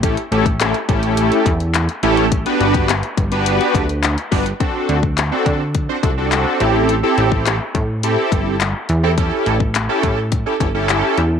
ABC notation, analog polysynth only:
X:1
M:4/4
L:1/16
Q:1/4=105
K:Ador
V:1 name="Analog polysynth"
[A,^CEGA] z [A,CEGA] z [A,CEGA] z [A,CEGA]4 z4 [A,CEGA]2 | z [B,DFGB]3 z3 [B,DFGB]4 z3 [B,DFGB] z | [CDFA]3 z2 [CDFA]2 z2 [CDFc] [CDFA] [CDFA]3 [CEGA]2 | z [CEGA]4 z3 [CEGA]4 z3 [CEGA] |
[^CEGA]3 z2 [CEGA]2 z2 [CEGA] [CEGA] [CEGA]3 z2 |]